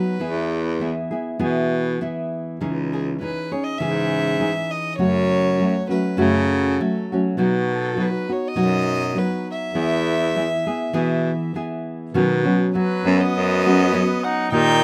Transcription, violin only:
0.00 0.81 B4 medium
2.93 3.06 G#4 medium
3.21 3.53 B4 medium
3.52 3.66 C#5 medium
3.64 3.80 D#5 medium
3.79 4.73 E5 medium
4.71 4.98 D#5 medium
4.99 5.87 C#5 loud
5.90 6.14 B4 medium
6.14 6.22 B4 medium
6.21 7.11 A4 medium
7.72 8.03 A4 medium
8.01 8.34 B4 medium
8.33 8.50 C#5 medium
8.48 9.20 D#5 medium
9.18 9.48 B4 medium
9.52 11.52 E5 medium
12.75 13.22 B4 medium
13.21 14.25 D#5 medium
14.24 14.51 F#5 medium
14.53 14.84 G5 loud

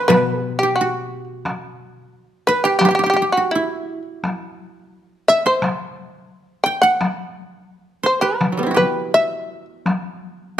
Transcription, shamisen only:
0.08 0.42 B4 medium
0.42 0.57 G4 medium
0.59 0.75 G4 medium
0.76 1.24 F#4 medium
2.47 2.63 B4 medium
2.64 2.78 G4 medium
2.79 2.87 G4 medium
2.89 2.94 G4 soft
2.95 3.02 G4 medium
3.04 3.09 G4 medium
3.10 3.15 G4 medium
3.16 3.24 G4 soft
3.32 3.50 F#4 medium
3.51 4.02 E4 medium
5.28 5.44 E5 medium
5.47 5.77 C5 medium
6.64 6.81 G5 medium
6.82 7.14 F#5 medium
8.06 8.21 C5 medium
8.21 8.72 B4 medium
8.77 9.11 B4 medium
9.14 9.65 E5 medium

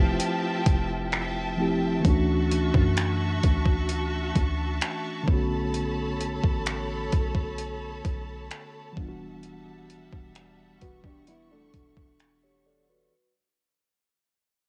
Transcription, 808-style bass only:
0.00 0.19 F1 loud
0.67 2.01 F1 loud
2.05 2.71 D2 loud
2.75 3.41 F#2 loud
3.44 4.32 D2 loud
4.36 4.80 D2 loud
5.28 6.39 B1 loud
6.44 7.10 A1 loud
7.13 8.01 B1 medium
8.05 8.49 B1 medium
8.97 10.08 E1 loud
10.13 10.79 E1 loud
10.82 11.71 E1 loud
11.74 13.09 E1 loud

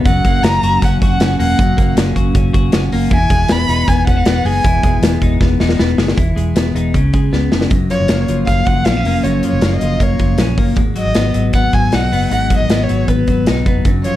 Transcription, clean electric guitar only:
0.00 0.63 A#4 medium
0.06 1.57 F#2 medium
0.25 1.38 A#3 medium
0.44 0.81 C#4 medium
0.64 1.01 F#4 medium
0.83 1.20 C#4 medium
1.03 2.15 F#4 medium
1.21 1.96 C#4 medium
1.39 1.76 A#3 medium
1.59 3.11 F#2 medium
1.77 2.92 A#3 medium
1.97 2.33 C#4 medium
2.16 2.52 F#4 medium
2.35 2.71 C#4 medium
2.54 3.15 F#4 medium
2.73 3.15 C#4 medium
2.93 3.15 A#3 medium
3.11 4.64 E3 medium
3.31 4.45 G#3 medium
3.50 3.88 B3 medium
3.70 4.07 D#4 medium
3.89 4.27 B3 medium
4.08 4.17 C#4 medium
4.17 5.21 D#4 medium
4.27 5.03 B3 medium
4.46 4.83 G#3 medium
4.64 6.16 E3 medium
4.84 5.97 G#3 medium
5.03 5.41 B3 medium
5.22 5.59 D#4 medium
5.42 5.78 B3 medium
5.61 6.21 D#4 medium
5.79 6.21 B3 medium
5.98 6.21 G#3 medium
6.17 6.94 E3 medium
6.36 6.98 G#3 medium
6.56 6.98 B3 medium
6.75 6.98 D#4 medium
6.95 7.75 C#3 medium
7.14 7.51 G#3 medium
7.33 7.75 B3 medium
7.52 7.75 G#3 medium
7.71 9.24 F#2 medium
7.91 8.28 F3 medium
8.09 8.47 A#3 medium
8.29 8.67 F3 medium
8.49 9.05 A#3 medium
8.68 9.43 F3 medium
8.88 8.97 B3 medium
8.97 10.38 C#4 soft
9.06 9.62 A#3 medium
9.25 10.76 F#2 medium
9.44 9.81 F3 medium
9.63 10.00 A#3 medium
9.82 10.19 F3 medium
10.01 10.57 A#3 medium
10.20 10.82 F3 medium
10.39 10.82 C#4 medium
10.58 10.81 A#3 medium
10.77 12.30 G#2 medium
10.96 11.34 F#3 medium
11.16 11.53 B3 medium
11.34 11.73 F#3 medium
11.54 12.11 B3 medium
11.73 12.51 F#3 medium
11.93 13.47 D#4 medium
12.12 12.70 B3 medium
12.31 13.86 G#2 medium
12.51 12.89 F#3 medium
12.71 13.08 B3 medium
12.90 13.28 F#3 medium
13.09 13.66 B3 medium
13.28 14.05 F#3 medium
13.48 13.90 D#4 medium
13.67 13.90 B3 medium
13.86 14.16 F#2 medium
14.06 14.16 F3 medium

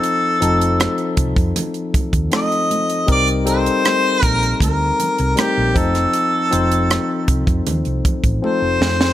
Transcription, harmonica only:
0.00 1.15 A4 medium
2.36 3.06 D#5 medium
3.11 3.27 D5 loud
3.49 4.24 C5 loud
4.24 4.58 A#4 loud
4.63 5.40 A#4 medium
5.38 5.79 G4 medium
5.78 7.29 A4 medium
8.45 9.13 C5 medium

